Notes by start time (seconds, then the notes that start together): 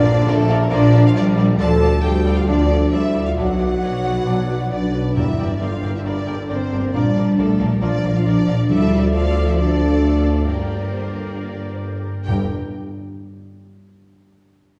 Already playing: A#1 A#2 D3 F3 A#3 D4 D5 D6
0.05 A#4 D5 F5
0.27 A#1 A3 A4 A#4 D5 F5
0.40 A#5
0.48 A#4 D5 F5
0.61 A#3 A#4
0.70 A#1 A#2 F3 A#3 A#4 D5 F5
0.74 D4
0.84 F3
0.93 F4 A#4 D5 F5
1.05 F4 A#4 F5
1.15 A#1 G3 D4 A#4 D5 F5
1.27 A#5
1.37 A#4 D5 F5
1.49 A#4
1.58 D2 D3 F3 D4 A4 D5 A5
1.62 F5
1.72 A3
1.82 F4 A4 D5 F5
1.93 A4
2.03 D2 G3 G4 A4 D5 F5 G5
2.14 A5
2.25 A4 D5 F5
2.36 F4 A4 F5
2.47 D2 D3 F3 D4 A4 D5 F5
2.59 A3
2.71 A4 D5 F5
2.82 A4
2.92 D2 G3 E4 A4 D5 E5 F5
3.03 A5
3.14 A4 D5 F5
3.25 F4 A4 F5
3.36 B1 B2 F#3 D4 F#4 B4 D5 F#5
3.48 F#3
3.59 F#4 B4 D5 F#5
3.70 B4
3.81 B1 B4 C#5 D5 F#5
3.93 B5
4.04 B4 D5
4.15 B4
4.25 B1 B2 F#3 D4 B4 D5
4.39 F#3
4.49 F#4 B4 D5
4.61 B4 C#5
4.69 B1 D4 B4 D5 F#5
4.83 B5
4.94 B4 D5 F#5
5.06 B4
5.16 G1 G2 E3 G3 A#3 E4 A#4 D5 E5 G5
5.28 D3
5.38 G1 G4 A#4 D5 G5
5.51 A#3 D4 D5
5.60 G1 D3 F4 A#4 D5 F5 G5
5.73 D6
5.81 G1 A#4 D5 G5
5.94 E4 D5 E5
6.02 G1 G3 A#3 D4 A#4 D5 G5
6.06 G2 D5
6.18 D3
6.26 G1 G4 A#4 D5 G5
6.49 G1 C4 A#4 C5 D5 G5
6.71 G1 A#4 D5 G5
6.83 A#3 A#4
6.93 A#1 A#2 F3 G3 A#3 D4 A#4 D5 F5
7.06 F3
7.15 A#1 F4 A#4 D5 F5
7.37 A#1 A3 A4 A#4 D5 F5
7.50 A#5
7.59 A#1 A#4 D5 F5
7.71 A#3 A#4
7.81 A#1 A#2 F3 A#3 D4 A#4 D5 F5
7.94 F3
8.04 A#1 A#4 D5 F5
8.14 F4 A#4 F5
8.25 A#1 F3 D4 A#4 D5 F5
8.37 A#5
8.47 A#1 A#4 D5 F5
8.60 A#4
8.68 D2 D3 F3 G3 A3 E4 A4 D5 E5 F5
8.81 A3
8.92 F4
9.03 D4 A4 D5
9.13 F3 A3 F4 A4 D5 F5
9.24 A5
9.35 F5
9.47 E4 A4 E5
9.57 D3 F3 A3 D4 A4 D5 F5
9.68 A3
9.79 F4
9.91 A4
10.02 A3 F5
10.13 A5
10.25 A3 A4
10.36 A4
10.46 G1 G2 D3 G3 A#3 G4 A#4 D5 G5
10.59 D3
10.70 G4
10.91 C5 G5
11.04 A#5
11.17 G5
11.27 A#4
11.39 G2 D5
11.49 D3
11.60 G4
11.72 A#4 C5
11.83 A#4 G5
11.94 A#5
12.05 G5
12.17 A#4
12.23 G2 D3 G3 D4 G4 G5
12.27 G1 G2 G3 A#3 G4 A#4 G5
12.32 G5